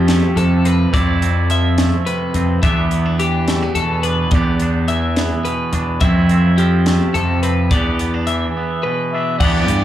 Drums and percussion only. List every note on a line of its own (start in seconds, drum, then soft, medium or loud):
0.08 snare loud
0.08 closed hi-hat medium
0.37 closed hi-hat medium
0.65 closed hi-hat medium
0.94 kick loud
0.94 closed hi-hat medium
1.22 closed hi-hat medium
1.50 closed hi-hat medium
1.78 snare loud
1.78 closed hi-hat medium
2.07 closed hi-hat medium
2.34 closed hi-hat medium
2.63 kick loud
2.63 closed hi-hat medium
2.91 closed hi-hat medium
3.20 closed hi-hat medium
3.48 snare loud
3.48 closed hi-hat medium
3.75 closed hi-hat medium
4.03 closed hi-hat medium
4.31 kick loud
4.31 closed hi-hat medium
4.60 closed hi-hat medium
4.88 closed hi-hat medium
5.16 snare loud
5.16 closed hi-hat medium
5.45 closed hi-hat soft
5.73 closed hi-hat medium
6.01 kick loud
6.01 closed hi-hat medium
6.29 closed hi-hat medium
6.58 closed hi-hat medium
6.86 snare loud
6.86 closed hi-hat medium
7.15 closed hi-hat medium
7.43 closed hi-hat medium
7.71 kick loud
7.71 closed hi-hat medium
7.99 closed hi-hat medium
8.27 closed hi-hat medium
9.40 kick loud
9.40 crash loud
9.68 closed hi-hat medium